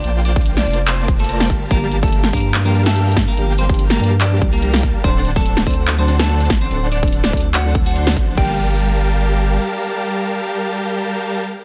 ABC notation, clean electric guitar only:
X:1
M:4/4
L:1/16
Q:"Swing 16ths" 1/4=144
K:Gm
V:1 name="Clean electric guitar"
[Dd] z [Dd]2 z [Dd]2 z [Cc]2 z [A,A]4 z | [B,B]2 z [A,A]2 z [B,B]2 z [B,B]2 [A,A]3 z [B,B]- | [B,B] z [Cc]2 z [B,B]2 z [Dd]2 z [B,B]4 z | [Cc]2 z [A,A]2 z [Cc]2 z [Cc]2 [A,A]3 z [Cc]- |
[Cc] z [Dd]2 z [Dd]2 z [^F^f]2 z [Ff]4 z | g16- | g16 |]